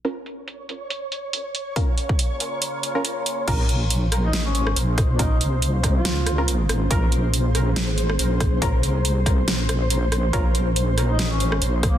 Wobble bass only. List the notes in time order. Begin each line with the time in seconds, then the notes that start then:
3.48 A#1
4.37 A1
4.63 G#1
4.77 A#1
5.41 C2
6.05 C#2
6.69 G#1
6.91 A#1
7.80 A1
8.06 G#1
8.19 A#1
8.83 C2
9.47 A#1
10.33 A#1
11.22 A1
11.48 G#1
11.62 A#1